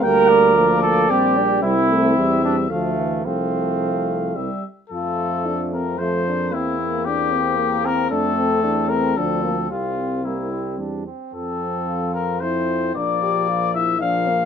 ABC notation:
X:1
M:3/4
L:1/8
Q:1/4=112
K:F
V:1 name="Trumpet"
g d4- d | e4 f2 | f4 e z | A3 B c2 |
E2 G3 B | A3 B A2 | F2 E2 z2 | A3 B c2 |
d3 e f2 |]
V:2 name="Flugelhorn"
B3 A G2 | E3 D A,2 | C4- C z | A,4 A, B, |
C2 C4 | C4 C2 | C2 B, C D C | C4 C2 |
B,4 B,2 |]
V:3 name="French horn"
B,2 B,2 C D | C4 A,2 | A,4 G, z | F2 D C A, D |
C B, D C B, C | D C D C D B, | C4- C z | z2 F2 E2 |
D G F E D B, |]
V:4 name="Trombone" clef=bass
G,2 F,2 G,2 | G, A, G, G, F, E, | F,4 G, z | F,4 F,2 |
B,2 B,4 | A,4 F,2 | G,2 G,3 z | F,4 F,2 |
F,4 F,2 |]
V:5 name="Tuba" clef=bass
D,,4 B,,,2 | C,,2 E,,2 D,,2 | C,,4 C,, z | F,,6 |
E,,6 | F,,2 E,,2 D,,2 | C,,4 E,, z | F,,6 |
B,,,6 |]